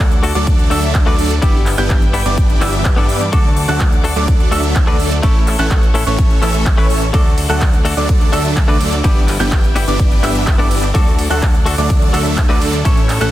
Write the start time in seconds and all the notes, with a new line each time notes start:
Already playing: D2 F#3 A3 D4 A4 D5 F#5 D6 F#6
0.12 closed hi-hat
0.23 A3 D4 F#4 A4, open hi-hat
0.35 D2 F#3 A3 D4 A4 D5 D6, closed hi-hat
0.47 kick, closed hi-hat
0.59 closed hi-hat
0.70 D2 F#3 A3 D4 F#4 A4 E5 E6, open hi-hat
0.83 closed hi-hat
0.95 kick, clap, closed hi-hat
1.06 D2 F#3 A3 D4 F#4 A4 B4 D5 D6
1.19 open hi-hat
1.30 closed hi-hat
1.42 G1 E3 B3 D4 E4 G4 B4 D5 E5 G5 D6, kick, closed hi-hat
1.66 clap, open hi-hat
1.78 G1 E3 B3 D4 E4 G4 G5 G6, closed hi-hat
1.90 kick, clap, closed hi-hat
2.02 closed hi-hat
2.13 B3 D4 E4 G4, open hi-hat
2.26 G1 E3 B3 D4 G4 D5 D6, closed hi-hat
2.38 kick, closed hi-hat
2.49 closed hi-hat
2.61 G1 E3 B3 D4 E4 G4 E5 E6, clap, open hi-hat
2.73 closed hi-hat
2.85 kick, clap, closed hi-hat
2.96 G2 E3 B3 D4 E4 G4 A4 D5 D6
3.09 open hi-hat
3.21 closed hi-hat
3.32 D2 F#3 A3 D4 F#4 A4 D5 F#5 D6, kick, closed hi-hat
3.57 open hi-hat
3.68 D2 F#3 A3 D4 F#4 A4 F#5 F#6, closed hi-hat
3.80 kick, clap, closed hi-hat
3.92 closed hi-hat
4.04 A3 D4 F#4 A4, open hi-hat
4.16 D2 F#3 A3 D4 A4 D5 D6, closed hi-hat
4.28 kick, closed hi-hat
4.40 closed hi-hat
4.51 D2 F#3 A3 D4 F#4 A4 E5 E6, open hi-hat
4.64 closed hi-hat
4.76 kick, clap, closed hi-hat
4.87 D2 F#3 A3 D4 F#4 A4 B4 D5 D6
5.00 open hi-hat
5.11 closed hi-hat
5.23 A1 E3 A3 C#4 E4 A4 C#5 E5 C#6, kick, closed hi-hat
5.47 clap, open hi-hat
5.58 A1 E3 A3 C#4 E4 A4 F#5 F#6, closed hi-hat
5.71 kick, clap, closed hi-hat
5.83 closed hi-hat
5.94 A3 C#4 E4 A4, open hi-hat
6.07 A1 E3 A3 C#4 A4 C#5 C#6, closed hi-hat
6.19 kick, closed hi-hat
6.30 closed hi-hat
6.42 A1 E3 A3 C#4 E4 A4 E5 E6, clap, open hi-hat
6.54 closed hi-hat
6.66 kick, clap, closed hi-hat
6.77 A1 E3 A3 C#4 E4 A4 B4 C#5 C#6
6.90 open hi-hat
7.02 closed hi-hat
7.13 D2 F#3 A3 D4 F#4 A4 D5 F#5 D6, kick, closed hi-hat, ride
7.38 open hi-hat, ride
7.49 D2 F#3 A3 D4 F#4 A4 F#5 F#6, closed hi-hat
7.61 kick, clap, closed hi-hat, ride
7.73 closed hi-hat
7.85 A3 D4 F#4 A4, open hi-hat, ride
7.97 D2 F#3 A3 D4 A4 D5 D6, closed hi-hat
8.09 kick, closed hi-hat, ride
8.21 closed hi-hat
8.32 D2 F#3 A3 D4 F#4 A4 E5 E6, open hi-hat, ride
8.45 closed hi-hat
8.57 kick, clap, closed hi-hat, ride
8.68 D2 F#3 A3 D4 F#4 A4 B4 D5 D6
8.81 open hi-hat, ride
8.92 closed hi-hat
9.04 G1 E3 B3 D4 E4 G4 B4 D5 E5 G5 D6, kick, closed hi-hat, ride
9.28 clap, open hi-hat, ride
9.39 G1 E3 B3 D4 E4 G4 G5 G6, closed hi-hat
9.52 kick, clap, closed hi-hat, ride
9.64 closed hi-hat
9.75 B3 D4 E4 G4, open hi-hat, ride
9.88 G1 E3 B3 D4 G4 D5 D6, closed hi-hat
10.00 kick, closed hi-hat, ride
10.11 closed hi-hat
10.23 G1 E3 B3 D4 E4 G4 E5 E6, clap, open hi-hat, ride
10.35 closed hi-hat
10.47 kick, clap, closed hi-hat, ride
10.58 G1 E3 B3 D4 E4 G4 A4 D5 D6
10.71 open hi-hat, ride
10.83 closed hi-hat
10.94 D2 F#3 A3 D4 F#4 A4 D5 F#5 D6, kick, closed hi-hat, ride
11.19 open hi-hat, ride
11.30 D2 F#3 A3 D4 F#4 A4 F#5 F#6, closed hi-hat
11.42 kick, clap, closed hi-hat, ride
11.54 closed hi-hat
11.66 A3 D4 F#4 A4, open hi-hat, ride
11.78 D2 F#3 A3 D4 A4 D5 D6, closed hi-hat
11.90 kick, closed hi-hat, ride
12.02 closed hi-hat
12.13 D2 F#3 A3 D4 F#4 A4 E5 E6, open hi-hat, ride
12.26 closed hi-hat
12.38 kick, clap, closed hi-hat, ride
12.49 D2 F#3 A3 D4 F#4 A4 B4 D5 D6
12.61 open hi-hat, ride
12.73 closed hi-hat
12.85 A1 E3 A3 C#4 E4 A4 C#5 E5 C#6, kick, closed hi-hat, ride
12.97 closed hi-hat
13.09 clap, open hi-hat, ride
13.20 A1 E3 A3 C#4 E4 A4 F#5 F#6, closed hi-hat